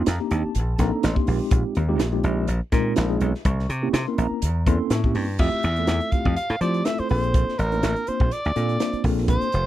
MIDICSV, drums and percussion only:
0, 0, Header, 1, 2, 480
1, 0, Start_track
1, 0, Tempo, 485044
1, 1507, Time_signature, 4, 2, 24, 8
1, 9564, End_track
2, 0, Start_track
2, 0, Title_t, "Drums"
2, 62, Note_on_c, 9, 42, 96
2, 67, Note_on_c, 9, 38, 112
2, 161, Note_off_c, 9, 42, 0
2, 166, Note_off_c, 9, 38, 0
2, 304, Note_on_c, 9, 42, 69
2, 403, Note_off_c, 9, 42, 0
2, 541, Note_on_c, 9, 42, 89
2, 640, Note_off_c, 9, 42, 0
2, 776, Note_on_c, 9, 42, 65
2, 781, Note_on_c, 9, 38, 33
2, 782, Note_on_c, 9, 36, 74
2, 875, Note_off_c, 9, 42, 0
2, 880, Note_off_c, 9, 38, 0
2, 881, Note_off_c, 9, 36, 0
2, 1021, Note_on_c, 9, 42, 84
2, 1026, Note_on_c, 9, 38, 121
2, 1120, Note_off_c, 9, 42, 0
2, 1125, Note_off_c, 9, 38, 0
2, 1151, Note_on_c, 9, 36, 75
2, 1250, Note_off_c, 9, 36, 0
2, 1258, Note_on_c, 9, 46, 85
2, 1357, Note_off_c, 9, 46, 0
2, 1493, Note_on_c, 9, 42, 85
2, 1498, Note_on_c, 9, 36, 112
2, 1592, Note_off_c, 9, 42, 0
2, 1597, Note_off_c, 9, 36, 0
2, 1733, Note_on_c, 9, 42, 59
2, 1832, Note_off_c, 9, 42, 0
2, 1973, Note_on_c, 9, 42, 87
2, 1978, Note_on_c, 9, 38, 117
2, 2072, Note_off_c, 9, 42, 0
2, 2076, Note_off_c, 9, 38, 0
2, 2213, Note_on_c, 9, 42, 57
2, 2312, Note_off_c, 9, 42, 0
2, 2450, Note_on_c, 9, 42, 92
2, 2549, Note_off_c, 9, 42, 0
2, 2692, Note_on_c, 9, 42, 61
2, 2694, Note_on_c, 9, 36, 82
2, 2697, Note_on_c, 9, 38, 33
2, 2791, Note_off_c, 9, 42, 0
2, 2793, Note_off_c, 9, 36, 0
2, 2796, Note_off_c, 9, 38, 0
2, 2929, Note_on_c, 9, 42, 82
2, 2934, Note_on_c, 9, 38, 114
2, 3028, Note_off_c, 9, 42, 0
2, 3033, Note_off_c, 9, 38, 0
2, 3172, Note_on_c, 9, 42, 66
2, 3271, Note_off_c, 9, 42, 0
2, 3310, Note_on_c, 9, 38, 36
2, 3409, Note_off_c, 9, 38, 0
2, 3414, Note_on_c, 9, 42, 87
2, 3416, Note_on_c, 9, 36, 116
2, 3513, Note_off_c, 9, 42, 0
2, 3515, Note_off_c, 9, 36, 0
2, 3553, Note_on_c, 9, 38, 35
2, 3652, Note_off_c, 9, 38, 0
2, 3658, Note_on_c, 9, 42, 65
2, 3757, Note_off_c, 9, 42, 0
2, 3895, Note_on_c, 9, 42, 94
2, 3900, Note_on_c, 9, 38, 127
2, 3994, Note_off_c, 9, 42, 0
2, 3999, Note_off_c, 9, 38, 0
2, 4137, Note_on_c, 9, 42, 68
2, 4236, Note_off_c, 9, 42, 0
2, 4373, Note_on_c, 9, 42, 94
2, 4472, Note_off_c, 9, 42, 0
2, 4617, Note_on_c, 9, 36, 78
2, 4618, Note_on_c, 9, 42, 63
2, 4716, Note_off_c, 9, 36, 0
2, 4717, Note_off_c, 9, 42, 0
2, 4852, Note_on_c, 9, 42, 89
2, 4857, Note_on_c, 9, 38, 116
2, 4951, Note_off_c, 9, 42, 0
2, 4956, Note_off_c, 9, 38, 0
2, 4987, Note_on_c, 9, 36, 76
2, 5086, Note_off_c, 9, 36, 0
2, 5094, Note_on_c, 9, 46, 86
2, 5193, Note_off_c, 9, 46, 0
2, 5329, Note_on_c, 9, 49, 89
2, 5336, Note_on_c, 9, 36, 106
2, 5428, Note_off_c, 9, 49, 0
2, 5435, Note_off_c, 9, 36, 0
2, 5460, Note_on_c, 9, 42, 33
2, 5559, Note_off_c, 9, 42, 0
2, 5570, Note_on_c, 9, 42, 51
2, 5669, Note_off_c, 9, 42, 0
2, 5700, Note_on_c, 9, 42, 34
2, 5798, Note_off_c, 9, 42, 0
2, 5810, Note_on_c, 9, 42, 81
2, 5814, Note_on_c, 9, 38, 113
2, 5909, Note_off_c, 9, 42, 0
2, 5913, Note_off_c, 9, 38, 0
2, 5944, Note_on_c, 9, 42, 35
2, 6043, Note_off_c, 9, 42, 0
2, 6054, Note_on_c, 9, 42, 51
2, 6058, Note_on_c, 9, 36, 65
2, 6153, Note_off_c, 9, 42, 0
2, 6157, Note_off_c, 9, 36, 0
2, 6189, Note_on_c, 9, 36, 75
2, 6288, Note_off_c, 9, 36, 0
2, 6298, Note_on_c, 9, 42, 79
2, 6397, Note_off_c, 9, 42, 0
2, 6427, Note_on_c, 9, 42, 35
2, 6526, Note_off_c, 9, 42, 0
2, 6540, Note_on_c, 9, 42, 54
2, 6639, Note_off_c, 9, 42, 0
2, 6670, Note_on_c, 9, 42, 35
2, 6769, Note_off_c, 9, 42, 0
2, 6779, Note_on_c, 9, 42, 73
2, 6784, Note_on_c, 9, 38, 95
2, 6878, Note_off_c, 9, 42, 0
2, 6883, Note_off_c, 9, 38, 0
2, 6909, Note_on_c, 9, 42, 32
2, 7008, Note_off_c, 9, 42, 0
2, 7019, Note_on_c, 9, 46, 70
2, 7118, Note_off_c, 9, 46, 0
2, 7155, Note_on_c, 9, 42, 34
2, 7254, Note_off_c, 9, 42, 0
2, 7266, Note_on_c, 9, 36, 103
2, 7268, Note_on_c, 9, 42, 81
2, 7365, Note_off_c, 9, 36, 0
2, 7367, Note_off_c, 9, 42, 0
2, 7407, Note_on_c, 9, 38, 33
2, 7506, Note_off_c, 9, 38, 0
2, 7508, Note_on_c, 9, 42, 58
2, 7607, Note_off_c, 9, 42, 0
2, 7638, Note_on_c, 9, 42, 37
2, 7737, Note_off_c, 9, 42, 0
2, 7747, Note_on_c, 9, 42, 86
2, 7752, Note_on_c, 9, 38, 107
2, 7846, Note_off_c, 9, 42, 0
2, 7851, Note_off_c, 9, 38, 0
2, 7877, Note_on_c, 9, 42, 36
2, 7976, Note_off_c, 9, 42, 0
2, 7986, Note_on_c, 9, 42, 62
2, 8085, Note_off_c, 9, 42, 0
2, 8116, Note_on_c, 9, 36, 75
2, 8215, Note_off_c, 9, 36, 0
2, 8228, Note_on_c, 9, 42, 84
2, 8327, Note_off_c, 9, 42, 0
2, 8362, Note_on_c, 9, 42, 34
2, 8461, Note_off_c, 9, 42, 0
2, 8470, Note_on_c, 9, 42, 57
2, 8569, Note_off_c, 9, 42, 0
2, 8599, Note_on_c, 9, 42, 34
2, 8698, Note_off_c, 9, 42, 0
2, 8707, Note_on_c, 9, 42, 78
2, 8712, Note_on_c, 9, 38, 99
2, 8806, Note_off_c, 9, 42, 0
2, 8811, Note_off_c, 9, 38, 0
2, 8838, Note_on_c, 9, 42, 32
2, 8936, Note_off_c, 9, 42, 0
2, 8945, Note_on_c, 9, 46, 78
2, 8947, Note_on_c, 9, 36, 71
2, 9044, Note_off_c, 9, 46, 0
2, 9046, Note_off_c, 9, 36, 0
2, 9080, Note_on_c, 9, 38, 30
2, 9179, Note_off_c, 9, 38, 0
2, 9185, Note_on_c, 9, 42, 79
2, 9186, Note_on_c, 9, 36, 107
2, 9284, Note_off_c, 9, 42, 0
2, 9285, Note_off_c, 9, 36, 0
2, 9315, Note_on_c, 9, 42, 37
2, 9414, Note_off_c, 9, 42, 0
2, 9423, Note_on_c, 9, 42, 58
2, 9522, Note_off_c, 9, 42, 0
2, 9564, End_track
0, 0, End_of_file